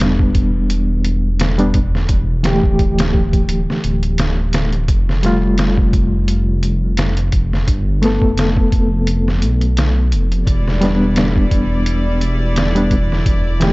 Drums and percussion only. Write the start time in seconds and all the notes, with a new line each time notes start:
0.00 snare, closed hi-hat
0.19 kick
0.35 kick, closed hi-hat
0.70 closed hi-hat
1.05 closed hi-hat
1.40 snare, closed hi-hat
1.59 closed hi-hat
1.74 kick, closed hi-hat
1.95 snare
2.09 kick, closed hi-hat
2.44 snare, closed hi-hat
2.63 kick
2.79 kick, closed hi-hat
2.99 snare, closed hi-hat
3.14 kick
3.33 kick, closed hi-hat
3.49 closed hi-hat
3.70 snare
3.84 closed hi-hat
4.03 closed hi-hat
4.18 snare, closed hi-hat
4.53 snare, closed hi-hat
4.72 closed hi-hat
4.88 kick, closed hi-hat
5.09 snare
5.23 snare, closed hi-hat
5.58 snare, closed hi-hat
5.77 kick
5.93 kick, closed hi-hat
6.28 closed hi-hat
6.63 closed hi-hat
6.97 snare, closed hi-hat
7.17 closed hi-hat
7.32 kick, closed hi-hat
7.53 snare
7.68 kick, closed hi-hat
8.03 snare, closed hi-hat
8.22 kick
8.38 snare, closed hi-hat
8.57 kick
8.72 kick, closed hi-hat
9.07 closed hi-hat
9.28 snare
9.42 closed hi-hat
9.61 closed hi-hat
9.77 snare, closed hi-hat
10.12 closed hi-hat
10.32 closed hi-hat
10.47 kick, closed hi-hat
10.68 snare
10.82 snare, closed hi-hat
11.16 snare, closed hi-hat
11.36 kick
11.51 kick, closed hi-hat
11.86 closed hi-hat
12.21 closed hi-hat
12.56 snare, closed hi-hat
12.76 closed hi-hat
12.91 kick, closed hi-hat
13.12 snare
13.26 kick, closed hi-hat
13.61 snare, closed hi-hat